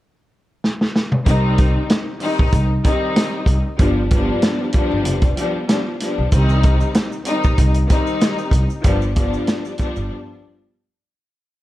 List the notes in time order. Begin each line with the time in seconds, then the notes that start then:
0.64 snare
0.81 snare
0.96 snare
1.12 mid tom
1.25 C2 D#3 G3 C4 D#4, kick, closed hi-hat
1.58 kick, closed hi-hat
1.89 snare, closed hi-hat
2.20 D#3 G3 C4 D#4, open hi-hat
2.39 A#1, kick
2.52 C2, kick, closed hi-hat
2.84 D#3 G3 C4 D#4, kick, closed hi-hat
3.16 snare, closed hi-hat
3.46 C2, kick, closed hi-hat
3.78 G1 F3 G3 B3 D4, kick, closed hi-hat
4.11 F3 G3 B3 D4, kick, closed hi-hat
4.42 snare, closed hi-hat
4.73 F3 G3 B3 D4, kick, closed hi-hat
4.91 G1
5.05 F1, closed hi-hat
5.22 kick, closed hi-hat
5.37 F3 G3 B3 D4, closed hi-hat
5.68 F3 G3 B3 D4, snare, closed hi-hat
6.00 F3 G3 B3 D4, snare, closed hi-hat
6.18 B1
6.31 C2 D#3 G3 C4 D#4, kick, closed hi-hat, shaker
6.49 shaker
6.63 kick, closed hi-hat, shaker
6.81 shaker
6.95 snare, closed hi-hat, shaker
7.12 shaker
7.25 D#3 G3 C4 D#4, closed hi-hat, shaker
7.44 A#1, kick, shaker
7.58 C2, kick, closed hi-hat, shaker
7.74 closed hi-hat, shaker
7.89 D#3 G3 C4 D#4, kick, closed hi-hat, shaker
8.07 shaker
8.21 snare, closed hi-hat, shaker
8.38 shaker
8.51 C2, kick, closed hi-hat, shaker
8.70 shaker
8.83 G1 F3 G3 B3 D4, kick, closed hi-hat, shaker
9.02 shaker
9.16 F3 G3 B3 D4, kick, closed hi-hat, shaker
9.34 shaker
9.47 snare, closed hi-hat, shaker
9.65 shaker
9.78 F3 G3 B3 D4, kick, closed hi-hat, shaker
9.96 G1, shaker